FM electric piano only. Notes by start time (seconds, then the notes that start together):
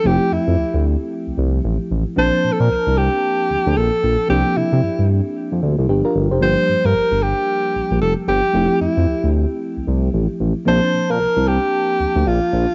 0.04 F3 A3 C4 E4 G4
2.16 F3 A#3 C4 D4 A5
4.28 F3 A#3 C4 D4 G4
5.89 D4 G4
6.05 F4 A#4
6.31 G4 C5
6.41 F3 G3 A#3 D4 G4
8.53 F3 A3 C4 E4 G4
10.65 F3 A#3 C4 D4 A5